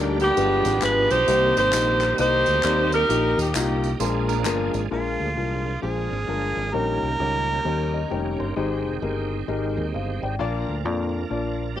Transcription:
Already playing: fingered electric bass D2, upright piano A#2 G3 A#3 D4 D#4 A#4, tonewheel organ D3 G3 A#3 D4 G4, saxophone section D4 G4
0.20 saxophone section B3 D4 G4, tambourine
0.36 fingered electric bass G1, upright piano G2 G#3 D4 F4 G4 B4, tonewheel organ F3 G#3 A#3 D4 G4, tambourine
0.43 tonewheel organ B3
0.65 fingered electric bass G#1, tambourine
0.81 fingered electric bass G#1, upright piano G#3 D4 F4 G4 B4, saxophone section B4, clap, tambourine
1.10 fingered electric bass B1, saxophone section D#4 G4 C5, tambourine
1.27 fingered electric bass C2, upright piano C3 A#3 C4 D#4 G4 C5, tonewheel organ D#3 G3 A#3 C4 G4, tambourine
1.56 fingered electric bass G#1, saxophone section D#4 G4 C5, tambourine
1.73 fingered electric bass A#1, upright piano A#3 C4 D#4 G4 C5, clap, tambourine
2.01 clap, tambourine
2.18 fingered electric bass C2, upright piano A#3 C4 D#4 G4 D#5, saxophone section D#4 G4 C5, tambourine
2.46 fingered electric bass D2, tambourine
2.63 fingered electric bass D#2, upright piano A#3 C4 D#4 G4 D5, clap, tambourine
2.92 saxophone section D#4 G4 A#4, tambourine
3.09 fingered electric bass A#1, upright piano A#2 A#3 D#4 G4, tonewheel organ A#3 D#4 G4, tambourine
3.37 fingered electric bass D#2, saxophone section G4, tambourine
3.55 fingered electric bass C2, upright piano A#3 D#4 F4, saxophone section A#3 D#4 G4, clap, tambourine
3.84 tambourine
3.99 fingered electric bass A#1, upright piano A#2 G#3 A#3 D4 F4 A#4, tonewheel organ F3 G#3 A#3 D4 G#4, clean electric guitar C5, tambourine
4.29 clean electric guitar D4 A#4, tambourine
4.45 fingered electric bass G1, upright piano G#3 A#3 D4 F4 A#4, clean electric guitar G#3 F4, clap, tambourine
4.74 fingered electric bass G#1, tambourine
4.91 fingered electric bass A#1, upright piano A#2 G#3 D4 F4 A#4, tonewheel organ F3 A#3 D4 G#4, harmonica F4
5.20 fingered electric bass D2
5.36 fingered electric bass C2, upright piano G#3 D4 F4 A#4
5.82 fingered electric bass A#1, upright piano G#3 D4 F4 C5, harmonica G#4
6.11 fingered electric bass G#1
6.28 fingered electric bass G1, upright piano G#3 D4 F4 A#4
6.57 fingered electric bass G#1
6.73 fingered electric bass A#1, upright piano A#2 G3 C#4 D#4 A#4, tonewheel organ D#3 A#3 C#4 G4, harmonica A#4
7.03 fingered electric bass C2
7.20 fingered electric bass C#2, upright piano G3 C#4 D#4 G4
7.64 fingered electric bass D#2, tonewheel organ D#3 A#3 C#4 G4, upright piano D#3 G3 C#4 D#4 A#4
7.94 upright piano D#5
8.11 fingered electric bass F1, upright piano G3 C#4 D#4 A#4 G5
8.40 fingered electric bass G1, upright piano C6
8.56 fingered electric bass G#1, upright piano G#2 G#3 D#4 G4 C5, tonewheel organ D#3 G#3 C4 G4
8.86 fingered electric bass F1
9.02 fingered electric bass G1, upright piano G#3 D#4 G4 A#4
9.48 fingered electric bass G#1, upright piano G#3 D#4 G4 A#4
9.77 fingered electric bass D#2
9.94 fingered electric bass G1, upright piano C5 F5
10.23 fingered electric bass G#1, upright piano D5 G5
10.39 fingered electric bass A#1, upright piano A#2 A#3 D4 F4 D5, tonewheel organ F3 A#3 D4 A4
10.45 tonewheel organ A#4
10.68 fingered electric bass D2
10.85 fingered electric bass F2, upright piano A#3 D4 F4 D5
11.30 fingered electric bass A#1, upright piano A#3 D4 F4 D5
11.76 fingered electric bass G#1, tonewheel organ F4 D5, saxophone section G4, upright piano G4 C5

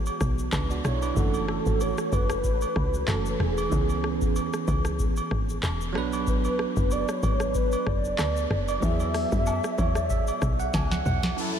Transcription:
Already playing: tine electric piano E3 G#3 B3 F#4
0.06 high agogo, shaker
0.21 log drum bass B1, kick, cross-stick, shaker
0.39 shaker
0.53 log drum bass C#2, tine electric piano D4 B4, kick, cross-stick, clap, high agogo, low woodblock, shaker
0.70 tine electric piano F#4 D5, shaker
0.84 log drum bass B1, tine electric piano E4 C#5, cross-stick, shaker
1.02 tine electric piano D4 B4, high agogo, shaker
1.14 log drum bass F#1, tine electric piano E3 A3 C#4, soft synth lead A4, kick, shaker
1.19 tine electric piano F#4
1.34 high agogo, shaker
1.48 cross-stick
1.66 log drum bass G#1, kick, shaker
1.81 soft synth lead C#5, high agogo, shaker
1.98 cross-stick, shaker
2.12 log drum bass F#1, soft synth lead B4, kick, high agogo, shaker
2.30 cross-stick, shaker
2.44 kick, shaker
2.61 high agogo, shaker
2.76 log drum bass C#2, kick, cross-stick
2.94 shaker
3.07 log drum bass F#1, tine electric piano E3 A3 C#4 F#4, soft synth lead A4, cross-stick, clap, high agogo, low woodblock, shaker
3.26 shaker
3.40 log drum bass E1, soft synth lead G#4, cross-stick
3.58 high agogo, shaker
3.69 log drum bass C#2, tine electric piano E3 B3 C#4, kick, shaker
3.74 tine electric piano G#4
3.89 high agogo, shaker
4.04 cross-stick
4.21 log drum bass E2, kick, shaker
4.36 high agogo, shaker
4.53 cross-stick, shaker
4.68 log drum bass C#2, kick, high agogo, shaker
4.85 cross-stick, shaker
4.99 kick, shaker
5.17 high agogo, shaker
5.31 log drum bass G#1, kick, cross-stick
5.49 shaker
5.63 log drum bass E1, cross-stick, clap, high agogo, low woodblock, shaker
5.81 shaker
5.93 log drum bass B1, tine electric piano F#3 B3 D4, cross-stick
5.98 tine electric piano B4
6.13 high agogo, shaker
6.27 soft synth lead B4, kick, shaker
6.44 high agogo, shaker
6.59 cross-stick
6.76 log drum bass F#1, kick, shaker
6.91 soft synth lead D5, high agogo, shaker
7.08 soft synth lead C#5, cross-stick, shaker
7.23 log drum bass G#1, kick, high agogo, shaker
7.40 cross-stick, shaker
7.54 soft synth lead B4, kick, shaker
7.72 high agogo, shaker
7.87 log drum bass F#1, soft synth lead D5, kick, cross-stick
8.05 shaker
8.18 log drum bass D2, cross-stick, clap, high agogo, low woodblock, shaker
8.36 shaker
8.50 log drum bass F#1, cross-stick
8.68 soft synth lead D5, high agogo, shaker
8.80 log drum bass E2, tine electric piano F#3 B3 E4, soft synth lead E5, kick, shaker
8.85 tine electric piano G#4
9.00 high agogo, shaker
9.14 cross-stick, open hi-hat, shaker
9.32 log drum bass F#2, kick, shaker
9.46 high agogo, low woodblock, shaker
9.64 cross-stick, shaker
9.78 log drum bass E2, tine electric piano C#5, kick, high agogo, shaker
9.95 tine electric piano D5, cross-stick, shaker
10.10 tine electric piano E5, kick, shaker
10.27 high agogo, shaker
10.42 log drum bass B1, kick, cross-stick, shaker
10.60 tine electric piano F#5, shaker
10.74 log drum bass C#2, tine electric piano G#5, kick, snare, high agogo, low woodblock, shaker
10.91 tine electric piano F#5, snare, shaker
11.06 log drum bass B1, tine electric piano F#5, mid tom, shaker
11.23 snare, high agogo, shaker
11.35 tine electric piano F#3 C#4 E4, string section F#3 E4 A4, downlifter
11.40 tine electric piano A4

